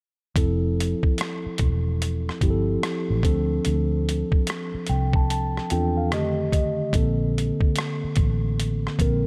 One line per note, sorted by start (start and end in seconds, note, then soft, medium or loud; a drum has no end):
0.36 0.93 F1 medium
0.36 1.77 F3 medium
0.36 1.77 C4 medium
0.36 1.77 E4 medium
0.36 1.77 A4 medium
0.36 kick medium
0.36 closed hi-hat medium
0.80 closed hi-hat medium
1.03 muted fingered electric bass stroke soft
1.03 kick medium
1.18 cross-stick medium
1.18 closed hi-hat medium
1.46 muted fingered electric bass stroke soft
1.58 2.29 E1 medium
1.58 kick medium
1.58 closed hi-hat medium
2.02 closed hi-hat medium
2.29 cross-stick soft
2.41 2.76 G1 medium
2.41 3.22 F3 medium
2.41 3.23 C4 medium
2.41 3.24 E4 medium
2.41 2.50 G4 medium
2.41 kick medium
2.41 closed hi-hat soft
2.50 3.23 A4 medium
2.83 cross-stick medium
2.83 closed hi-hat medium
3.10 3.22 A1 medium
3.23 3.58 D2 medium
3.23 4.64 F3 medium
3.23 4.65 C4 medium
3.23 4.65 D4 medium
3.23 4.65 A4 medium
3.23 kick medium
3.23 closed hi-hat medium
3.65 4.22 D2 loud
3.65 closed hi-hat medium
4.09 closed hi-hat medium
4.32 muted fingered electric bass stroke soft
4.32 kick medium
4.47 cross-stick loud
4.47 closed hi-hat medium
4.74 muted fingered electric bass stroke soft
4.87 5.58 C2 medium
4.87 5.13 G5 medium
4.87 closed hi-hat medium
5.13 5.29 A5 medium
5.13 kick medium
5.30 5.68 A5 medium
5.30 closed hi-hat medium
5.57 cross-stick soft
5.70 6.13 E2 medium
5.70 6.12 C4 medium
5.70 6.12 D4 medium
5.70 6.12 F4 medium
5.70 6.13 A4 medium
5.70 5.95 G5 medium
5.70 closed hi-hat medium
5.97 6.10 F5 soft
6.12 6.81 F2 medium
6.12 6.84 D3 medium
6.12 6.84 D#3 medium
6.12 6.84 A3 medium
6.12 6.85 G4 medium
6.12 6.50 D#5 medium
6.12 cross-stick medium
6.12 closed hi-hat medium
6.52 6.91 D#5 medium
6.52 kick medium
6.52 closed hi-hat medium
6.93 7.50 A#1 medium
6.93 8.34 D3 medium
6.93 8.35 A#3 medium
6.93 8.35 C4 medium
6.93 8.35 A4 medium
6.93 kick loud
6.93 closed hi-hat medium
7.38 closed hi-hat medium
7.61 muted fingered electric bass stroke soft
7.61 kick medium
7.76 cross-stick loud
7.76 closed hi-hat medium
8.04 muted fingered electric bass stroke soft
8.16 8.86 A1 medium
8.16 kick medium
8.16 closed hi-hat medium
8.60 closed hi-hat medium
8.87 cross-stick soft
8.99 9.27 A#1 medium
8.99 9.27 D3 medium
8.99 9.27 A#3 medium
8.99 9.27 C4 medium
8.99 9.27 A#4 medium
8.99 kick medium
8.99 closed hi-hat medium